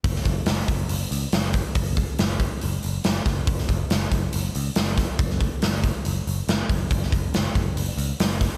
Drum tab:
HH |o-o-o-o-o-o-o-o-|o-o-o-o-o-o-o-o-|o-o-o-o-o-o-o-o-|o-o-o-o-o-o-o-o-|
SD |-o--o-------o---|----o-------o-o-|-o--o-------o-o-|-o--o-------o---|
BD |o-o---o-------o-|o-o---o-------o-|o-o---o-------o-|o-o---o-------o-|

HH |o-o-o-o-o-o-o-o-|
SD |-o--o-------o-o-|
BD |o-o---o-------o-|